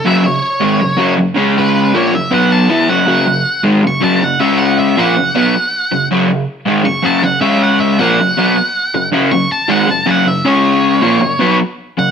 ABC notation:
X:1
M:4/4
L:1/8
Q:1/4=159
K:F#mix
V:1 name="Lead electric guitar"
e c4- c z2 | B2 c e f =a2 f- | f3 z c' =a f e | f e f6 |
z4 c' =a f e | f e f6 | z c' =a f a f e c- | c4- c z2 f |]
V:2 name="Overdriven electric guitar" clef=bass
[F,,C,F,] [F,,C,] z [G,,D,G,] [F,,C,] [F,,C,F,] [F,,C,] [C,G,C]- | [C,G,C]2 [A,,^E,A,] [F,,C,] [B,,F,B,]2 [=E,B,E] [F,,C,F,] | [F,,C,F,] [F,,C,] z [G,,D,G,] [F,,C,] [F,,C,F,] [F,,C,] [C,G,C]- | [C,G,C]2 [A,,^E,A,] [F,,C,] [B,,F,B,] z2 [F,,C,] |
[F,,C,F,] [F,,C,] z [G,,D,G,] [F,,C,] [F,,C,F,] [F,,C,] [C,G,C]- | [C,G,C]2 [A,,^E,A,] [F,,C,] [B,,F,B,] z2 [F,,C,] | [F,,C,F,] [F,,C,] z [G,,D,G,] [F,,C,] [F,,C,F,] [F,,C,] [C,G,C]- | [C,G,C]2 [A,,^E,A,] [F,,C,] [B,,F,B,] z2 [F,,C,] |]